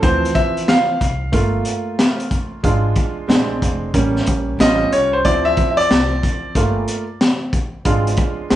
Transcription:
0.02 upright bass D2, grand piano E3 F3 C4 C5, kick, closed hi-hat
0.25 closed hi-hat
0.35 grand piano E5, kick, closed hi-hat
0.57 closed hi-hat
0.68 grand piano F5, snare, closed hi-hat
1.01 upright bass C2, kick, closed hi-hat
1.32 upright bass G1, grand piano A3 A#3 F4, kick, closed hi-hat
1.65 closed hi-hat
1.99 snare, closed hi-hat
2.20 closed hi-hat
2.31 kick, closed hi-hat
2.63 upright bass G#1, grand piano G#3 D4 F4, kick, closed hi-hat
2.96 kick, closed hi-hat
3.28 upright bass A#1, grand piano G#3 C4 D4, snare, closed hi-hat
3.62 upright bass F1, kick, closed hi-hat
3.94 upright bass A1, grand piano G3 A#3 C#4, kick, closed hi-hat
4.16 snare
4.27 upright bass A#1, kick, closed hi-hat
4.59 upright bass A1, grand piano G3 C#4 F4 D#5, snare, closed hi-hat
4.92 upright bass C2, grand piano C#5, closed hi-hat
5.13 grand piano C5
5.25 upright bass D2, grand piano F3 C4 E4 D5, kick, closed hi-hat
5.45 grand piano E5
5.57 kick, closed hi-hat
5.71 grand piano E5
5.77 grand piano D5, closed hi-hat
5.91 upright bass C2, snare, closed hi-hat
6.23 kick, closed hi-hat
6.55 upright bass G1, grand piano A3 A#3 F4, kick, closed hi-hat
6.88 closed hi-hat
7.21 snare, closed hi-hat
7.53 kick, closed hi-hat
7.85 upright bass G#1, grand piano G#3 D4 F4, kick, closed hi-hat
8.07 closed hi-hat
8.17 kick, closed hi-hat
8.50 upright bass A#1, grand piano G#3 C4 D4, snare, closed hi-hat

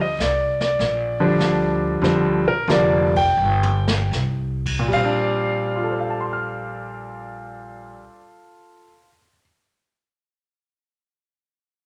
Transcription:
Already playing: upright bass D2
0.01 grand piano D#5
0.19 upright bass C2, grand piano D5, snare, hi-hat pedal
0.60 grand piano D5, snare
0.79 upright bass A#1, brush sweep, snare
1.20 grand piano D3 F3 G3 D4
1.39 upright bass D2, snare, hi-hat pedal
2.02 upright bass F2, grand piano D3 F3 G3 C4, brush sweep, snare
2.25 upright bass D2
2.46 upright bass A#1, grand piano A#4
2.68 upright bass F1, grand piano D3 F3 G3 A#3 D5, snare, hi-hat pedal
3.16 grand piano G5, kick, crash
3.37 upright bass G1
3.63 floor tom
3.88 snare
4.12 upright bass C2, snare, hi-hat pedal
4.66 kick, crash
4.79 grand piano A#2
4.88 upright bass A#1, grand piano G3
4.92 grand piano C4 F5, kick, crash
5.05 grand piano D4
5.76 grand piano F4
5.83 grand piano A4
5.91 grand piano C5
6.00 grand piano F5
6.10 grand piano A5
6.21 grand piano C6
6.33 grand piano F6

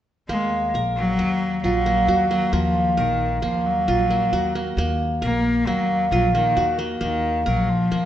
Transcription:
0.29 upright bass D#2, cello G#3, qanun A#3
0.74 upright bass A#1, qanun A#4
0.96 cello F#3
1.18 upright bass D#2, qanun A#3
1.63 upright bass A#1, cello F#3, qanun F4
1.86 qanun A#3
2.07 upright bass D#2, qanun F#4
2.30 cello F#3, qanun A#3
2.52 upright bass D#2, cello F3, qanun A#3
2.97 upright bass A#1, cello D#3, qanun A#4
3.42 upright bass D#2, cello F3, qanun A#3
3.66 cello F#3
3.88 upright bass A#1, qanun F4
4.10 qanun A#3
4.32 upright bass D#2, qanun F#4
4.55 qanun A#3
4.77 upright bass D#2, qanun A#3
5.22 upright bass A#1, cello A#3, qanun A#4
5.67 upright bass D#2, cello F#3, qanun A#3
6.11 upright bass A#1, cello F#3, qanun F4
6.34 cello D#3, qanun A#3
6.56 upright bass D#2, qanun F#4
6.79 qanun A#3
7.01 upright bass D#2, cello D#3, qanun A#3
7.46 upright bass A#1, cello F#3, qanun A#4
7.69 cello F3
7.91 upright bass D#2, qanun A#3

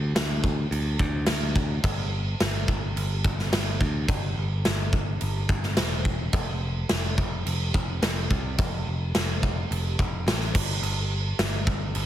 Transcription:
Already playing: picked electric bass D2
0.15 picked electric bass D2, snare, crash
0.44 kick
0.71 picked electric bass D2, crash
0.99 picked electric bass D2, kick
1.26 picked electric bass D2, snare, crash
1.56 kick
1.84 picked electric bass G1, kick, crash
2.40 picked electric bass G1, snare, crash
2.68 picked electric bass G1, kick
2.96 picked electric bass G1, crash
3.24 picked electric bass G1, kick
3.39 snare
3.52 picked electric bass G1, snare, crash
3.81 picked electric bass D2, kick
4.08 picked electric bass G1, kick, crash
4.37 picked electric bass G1
4.65 picked electric bass G1, snare, crash
4.93 kick
5.21 picked electric bass G1, crash
5.49 picked electric bass G1, kick
5.63 snare
5.77 picked electric bass E1, snare, crash
6.05 kick
6.33 picked electric bass F1, kick, crash
6.89 picked electric bass F1, snare, crash
7.18 picked electric bass F1, kick
7.46 picked electric bass F1, crash
7.74 picked electric bass F1, kick
8.02 picked electric bass F1, snare, crash
8.30 picked electric bass C2, kick
8.58 picked electric bass F1, kick, crash
8.87 picked electric bass F1
9.15 picked electric bass F1, snare, crash
9.43 kick
9.71 picked electric bass F1, crash
9.99 picked electric bass F1, kick
10.27 picked electric bass A1, snare, crash
10.41 snare
10.55 picked electric bass G1, kick, crash
10.82 picked electric bass G1, crash
11.39 picked electric bass G1, snare, crash
11.67 picked electric bass G1, kick
11.95 picked electric bass G1, crash

